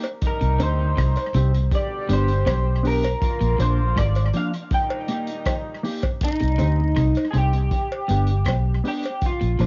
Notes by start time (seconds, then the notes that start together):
0.03 closed hi-hat, cowbell
0.21 C3 D#3 G3 D#4, kick, closed hi-hat
0.27 A#4
0.41 C2 C3, closed hi-hat
0.59 D2 D3 C4 D#4 G4 C5, closed hi-hat, cowbell
0.97 C2 C3, kick, cross-stick, closed hi-hat
1.15 closed hi-hat, cowbell
1.34 C2 C3 C4 D#4 G4, closed hi-hat
1.54 muted clean electric guitar stroke, closed hi-hat
1.71 B2 D3 G3 G4 D5, kick, closed hi-hat
2.09 G1 G2 B3 D4 G4, closed hi-hat
2.13 C5
2.28 closed hi-hat
2.46 B1 B2, kick, cross-stick, closed hi-hat, cowbell
2.83 B3 D4 G4, open hi-hat
2.87 A#4
3.03 closed hi-hat, cowbell
3.21 D3 F3 A#3 F4, kick, closed hi-hat
3.41 A#1 A#2, closed hi-hat
3.59 A#1 A#2 F3 A#3 D4 C5, closed hi-hat, cowbell
3.96 G#1 G#2 D5, kick, cross-stick, closed hi-hat
4.15 closed hi-hat, cowbell
4.33 F3 A#3 D4 F5, closed hi-hat
4.53 muted clean electric guitar stroke, closed hi-hat
4.71 A#2 D#3 G3 D#4 G5, kick, closed hi-hat
4.90 cowbell
5.08 A#3 D#4 G4, closed hi-hat
5.27 closed hi-hat
5.45 kick, cross-stick, closed hi-hat, cowbell
5.83 A#3 D#4 G4, open hi-hat
6.02 kick, closed hi-hat, cowbell
6.21 D#4, kick, closed hi-hat, vibraslap
6.40 C2 C3, closed hi-hat
6.58 D2 D3 C4 D#4 G4, closed hi-hat, cowbell
6.96 C2 C3, kick, cross-stick, closed hi-hat
7.15 closed hi-hat, cowbell
7.31 C3 C4 D#4 G#4, closed hi-hat
7.35 C2 G4
7.53 muted clean electric guitar stroke, closed hi-hat
7.71 kick, closed hi-hat
7.92 cowbell
8.08 G1 G2 B3 D4 G4, closed hi-hat
8.27 closed hi-hat
8.45 B1 B2, kick, cross-stick, closed hi-hat, cowbell
8.84 B3 D4 G4, open hi-hat
8.88 G4
9.03 closed hi-hat, cowbell
9.21 kick, closed hi-hat
9.26 F4
9.41 A#1 A#2, closed hi-hat
9.59 A#1 A#2 F3 A#3 D4, closed hi-hat, cowbell